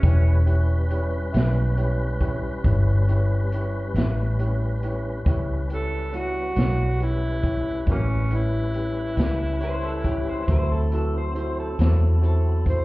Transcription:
Already playing: C#4
0.03 E1 G3 C#4 E4 G4 B4 C#5, kick, closed hi-hat
0.45 E4 G4 B4 C#5, closed hi-hat
0.89 E4 G4 B4 C#5, closed hi-hat
1.32 B1 E4 G4 B4 E5, closed hi-hat
1.37 snare
1.77 E4 G4 B4 C#5, closed hi-hat
2.20 E4 G4 B4 C#5, kick, closed hi-hat
2.64 G1 E4 G4 B4 C#5, kick, closed hi-hat
3.08 E4 G4 B4 C#5, closed hi-hat
3.52 E4 G4 B4 C#5, closed hi-hat
3.94 A1 E4 G4 B4 E5, snare, closed hi-hat
4.39 E4 G4 B4 C#5, closed hi-hat
4.83 E4 G4 B4 C#5, closed hi-hat
5.25 C#2 G3 C#4 E4 G4 B4 C#5, kick, closed hi-hat
5.70 E4 G4 B4 C#5, closed hi-hat
5.75 A4
6.12 G3 E4 F#4 B4 C#5, closed hi-hat
6.56 B1 G3 E4 B4 C#5, snare, closed hi-hat
7.00 E4 G4 B4 C#5, closed hi-hat
7.43 E4 G4 B4 C#5, kick, closed hi-hat
7.87 A1 E4 G4 B4 C#5, kick, closed hi-hat
7.91 F#3 A#3 C#4
8.30 E4 G4 B4 C#5, closed hi-hat
8.35 E4
8.74 E4 G4 B4 C#5, closed hi-hat
9.16 C#2 E4 G4 B4 E5, snare, closed hi-hat
9.60 E4 G4 B4 C5 C#5, closed hi-hat
9.85 A4
10.04 E4 G4 B4 C#5, kick, closed hi-hat
10.08 G4
10.29 C5
10.48 D2 F#3 C4 E4 F#4 A4 C5, kick, closed hi-hat
10.52 C5
10.72 A4
10.92 E4 F#4 A4 B4, closed hi-hat
11.18 C5
11.34 E4 F#4 A4 C5, closed hi-hat
11.38 C5
11.60 A4
11.78 E2 E4 F#4 A4 C5, snare, closed hi-hat
12.21 E4 F#4 A4 C5, closed hi-hat
12.25 A4
12.66 E4 F#4 A4 C5, kick, closed hi-hat

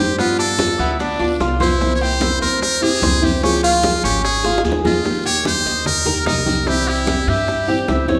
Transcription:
Already playing: G2 G4 C5
0.00 G3 A#3 D#4
0.18 G3 B3 F4, high bongo, high conga, long guiro, maracas
0.39 D4 A4, high bongo, high conga
0.59 G3 B3 F4, high bongo, high conga, short guiro, maracas
0.79 D2 B3 E4, short guiro, maracas
0.99 D4, muted nylon-string guitar stroke, high bongo, high conga, long guiro, maracas
1.19 D2 B3 D4 F4, high bongo, high conga, maracas
1.40 C2 G3 B3 F4, high bongo, low bongo, high conga, short guiro, maracas
1.60 B3 E4 F4 C5, high bongo, high conga, short guiro, maracas
1.80 C3 E3 A#3 C4 E4, high bongo, high conga, long guiro, maracas
1.95 C#5
2.01 G4 C5, high conga, maracas
2.21 E3 A#3 C4 E4, high bongo, high conga, short guiro, maracas
2.41 E2 A#4 C5, high conga, short guiro
2.62 A#4, muted nylon-string guitar stroke, high bongo, high conga, long guiro, maracas
2.82 E3 A#3 C4 E4 G4 G#4, high conga, maracas
3.01 C#2 E3 A#3 C4 E4 C5, high bongo, low bongo, high conga, short guiro, maracas
3.22 E3 A#3 C4 E4 G4, high conga, short guiro, maracas
3.42 C#3 F3 A#3 C#4 F4 G4 G#4, high bongo, high conga, long guiro, maracas
3.63 F4, high bongo, high conga, maracas
3.82 F3 A#3 F4 G#4, high bongo, high conga, short guiro, maracas
4.04 G#1 C#4 G4, short guiro, maracas
4.23 G#4, muted nylon-string guitar stroke, high bongo, high conga, long guiro, maracas
4.43 F3 A#3 F4 G#4, high bongo, high conga, maracas
4.58 high bongo
4.63 D#2 F3 A#3 F4 G#4, high conga, short guiro, maracas
4.72 low bongo
4.84 F3 A#3 F4 G#4 D#5, low bongo, high conga, short guiro, maracas
5.04 D#3 A#3 D#4 G4, high bongo, high conga, long guiro, maracas
5.25 G4 C#5, high conga, maracas
5.45 D#3 A#3 D#4 G4 C5, high bongo, high conga, short guiro, maracas
5.65 D#2 D#5, high conga, short guiro, maracas
5.86 A#4, muted nylon-string guitar stroke, high bongo, high conga, low conga, long guiro, maracas
6.05 A#3 D#4 G4 A#4, high conga, low conga, maracas
6.26 C2 D#3 A#3 D#4 G4 A#4, high bongo, low bongo, high conga, short guiro, maracas
6.46 A#3 D#4 G4, high conga, short guiro, maracas
6.66 C3 E3 G3 C4 E4 G4, high bongo, high conga, long guiro, maracas
6.87 E4 G4, high bongo, high conga, maracas
7.07 E3 G3 C4 E4, high bongo, high conga, short guiro, maracas
7.27 G2 E4 G4, short guiro, maracas
7.47 muted nylon-string guitar stroke, high bongo, high conga, long guiro, maracas
7.67 E3 G3 C4 E4 G4, high bongo, high conga, maracas
7.88 C#2 E3 G3 C4 E4 E5, high bongo, low bongo, high conga, short guiro, maracas
8.08 E3 G3 C4 E4 C#5, high bongo, high conga, short guiro, maracas

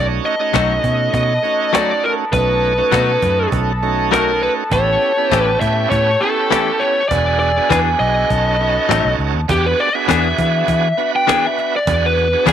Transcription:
Already playing: B1 A3 C#4 D#4 F#4 A4 B4 D#5 A5
0.25 D#5, cajon slap
0.40 A3 C#4 D#4 F#4
0.54 B1 F#3 A3 D#4 F#4, cajon bass, cajon slap
0.84 B2, cajon bass
1.14 B2 D#5, cajon bass
1.43 A3 C#4 D#4 F#4, cajon slap
1.73 F#3 A3 D#4 F#4 D5, cajon slap
2.04 A#4, cajon slap
2.32 B1 A3 C#4 D#4 F#4 B4, cajon bass
2.63 cajon slap
2.78 A3 C#4 D#4 F#4
2.92 B2 F#3 A3 D#4 F#4, cajon bass, cajon slap
3.22 F#2, cajon bass
3.52 B1, cajon bass
3.82 A3 C#4 D#4 F#4, cajon slap
4.11 F#3 A3 D#4 F#4 A#4, cajon slap
4.42 B4, cajon slap
4.70 A1 B3 C#4 E4 G4 C#5 G5, cajon bass
5.01 cajon slap
5.17 B3 C#4 E4 G4
5.32 A1 E3 A3 C#4 G4, cajon bass, cajon slap
5.38 B4
5.61 A2 E5, cajon bass
5.90 A2 C#5, cajon bass
6.21 B3 C#4 E4 G4 A4, cajon slap
6.51 E3 A3 C#4 G4, cajon slap
6.80 C#5, cajon slap
7.09 E1 B3 D4 F#4 G#4 D5 E5 G#5, cajon bass
7.39 D5, cajon slap
7.57 B3 D4 F#4 G#4
7.69 E2 E3 B3 D4 G#4 B4, cajon bass, cajon slap
7.99 B1 D#5, cajon slap
8.29 B1 C#4 D#4 F#4 A4 B4 D#5 A5, cajon bass, cajon slap
8.60 C#4 D#4 F#4 A4, cajon slap
8.89 A1 F#3 A3 D#4, cajon slap
9.05 B1
9.19 C#2, cajon slap
9.35 D#2
9.48 E2 B3 D4 F#4 G4 G#4, cajon bass
9.66 B4, cajon slap
9.79 D5, cajon slap
9.95 B3 D4 F#4 G#4 E5
10.08 E2 E3 B3 D4 G#4, cajon bass, cajon slap
10.38 E3, cajon bass
10.68 E3, cajon bass
10.97 B3 D4 F#4 B4, cajon slap
11.16 G5
11.27 E3 B3 D4 G#4, cajon slap
11.46 E5
11.58 cajon slap
11.76 D5
11.87 E2 B3 D4 F#4 G#4, cajon bass
12.06 B4
12.17 cajon slap
12.32 B3 D4 F#4 G#4
12.46 E3 B3 D4 G#4, cajon bass, cajon slap

